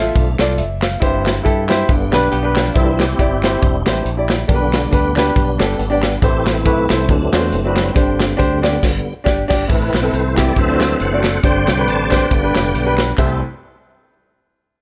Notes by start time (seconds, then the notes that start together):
Already playing: F4 A4 E5
0.15 B1 F3 A3 D4, kick, closed hi-hat
0.39 C2 F4 A4 D5, snare, clap, closed hi-hat
0.58 F#1 E5, closed hi-hat
0.82 F5, snare, clap, closed hi-hat
1.00 G1 G2 E3 G3 C4 E4 G4 C5, kick, closed hi-hat
1.26 snare, clap, closed hi-hat
1.43 G2 E4 G4 A4, kick, closed hi-hat
1.68 E4 G4 C5, snare, clap, closed hi-hat
1.88 G1 G2 D3 G3 B3, kick, closed hi-hat
2.12 B1 D4 G4 B4, snare, clap, closed hi-hat
2.32 B1 B3 G4, closed hi-hat
2.43 D4 G4 B4
2.56 F3 D4, snare, clap, closed hi-hat
2.74 C2 C3 E3 G3 C4 E4 G4 A4 C5, kick, closed hi-hat
2.99 C4 E4 G4, snare, clap, closed hi-hat
3.19 G1 E4 G4 D5, kick, closed hi-hat
3.43 E4 G4 C5, snare, clap, closed hi-hat
3.61 E1 G3 D4, kick, closed hi-hat
3.85 A1 E3 G3 C4 E4 G4 C5, snare, clap, closed hi-hat
4.05 A#1, closed hi-hat
4.17 E4 G4 D5
4.29 E4, snare, clap, closed hi-hat
4.47 B1 B2 D3 G3 B3 D4 G4 A#4, kick, closed hi-hat
4.55 B4
4.73 snare, clap, closed hi-hat
4.91 D2 D4 G4 B4, kick, closed hi-hat
5.16 D4 G4 B4, snare, clap, closed hi-hat
5.35 B1 G3 B3 D4, kick, closed hi-hat
5.58 G1 D4 G4 A4, snare, clap, closed hi-hat
5.79 G#1, closed hi-hat
5.90 D4 G4 D5
6.02 snare, clap, closed hi-hat
6.22 A1 A2 E3 A3 C4 E4 G4 A4 C5, kick, closed hi-hat
6.46 A3 C4 E4, snare, clap, closed hi-hat
6.65 B1 E4 A4 B4, kick, closed hi-hat
6.90 C2 E4 A4 C5, snare, clap, closed hi-hat
7.03 C#4
7.08 D2 D3 E3 F#3 A3 C4 D4, kick, closed hi-hat
7.33 E2 G#3 A3 C4 D4 F#4 C5, snare, clap, closed hi-hat
7.43 A3
7.52 F#1, closed hi-hat
7.64 A3 C4 D4 F#4 B4
7.76 G3 C4, snare, clap, closed hi-hat
7.94 G1 G2 D3 G3 C4 D4 G4 C5, kick, closed hi-hat
8.20 snare, clap, closed hi-hat
8.37 D2 D4 G4 C5, kick, closed hi-hat
8.62 D3 G3 B3 D4 G4 D5, snare, clap, closed hi-hat
8.83 G1 D3 G3 B3, kick, snare, crash
9.24 G1 D4 G4 D5, kick, snare
9.48 G1 D4 G4 D5, kick, snare, crash
9.67 A1 A2 E3 A3 C4 E4 A4, kick, closed hi-hat
9.71 C4 B4
9.94 B1, snare, clap, closed hi-hat
10.02 C4 E4 A4
10.13 C2 C5, closed hi-hat
10.36 C4 E4 G4 D5, kick, snare, clap, closed hi-hat
10.56 D2 D3 E3 F#3 C4 A4 C5 E5, kick, closed hi-hat
10.68 A3 C4 D4 E4 C5
10.75 F#4
10.81 snare, clap, closed hi-hat
10.99 F#1 A4 C5 F#5, closed hi-hat
11.12 A3 C4 D4 F#4 D5
11.24 snare, clap, closed hi-hat
11.43 G1 G2 D3 G3 C4 D4 G4 C5 D5 G5, kick, closed hi-hat
11.67 C2, snare, clap, closed hi-hat
11.77 D4 G4 B4
11.87 A1 A5, closed hi-hat
12.10 D4 G4 B4 C5 D5 G5, kick, snare, clap, closed hi-hat
12.30 G1 G2 D3 G3 B3, kick, closed hi-hat
12.43 D4 G4 B4
12.55 F1, snare, clap, closed hi-hat
12.74 B1, closed hi-hat
12.85 D4 G4 B4
12.98 snare, clap, closed hi-hat
13.18 C2 G3 A3 C4 E4 G4 A4 C5, kick, clap, splash